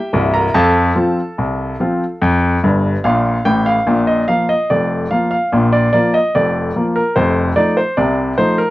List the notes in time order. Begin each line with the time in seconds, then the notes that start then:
Already playing: G4 E5 G5
0.13 C1 C2
0.34 A#4 A#5
0.54 F2 A4 F5 A5
0.95 F3 C4 F4
1.38 C2
1.80 F3 C4 F4
2.22 F2
2.64 G1 G2
3.04 A#1 A#2 F5
3.45 A1 A2 G5
3.66 F5
3.87 A#1 A#2
4.07 D#5
4.28 F3 A#3 F4 F5
4.49 D#5
4.70 F1 F2 D5
5.11 F3 A#3 F4 F5
5.31 F5
5.52 A#1 A#2
5.73 D5
5.93 F3 A#3 F4 D5
6.14 D#5
6.35 F1 F2 D5
6.76 F3 A#3 F4
6.96 A#4
7.16 F1 F2 C5
7.56 F3 A3 D#4 D5
7.77 C5
7.97 C2 C3 D5
8.38 F3 A3 D#4 C5
8.58 A#4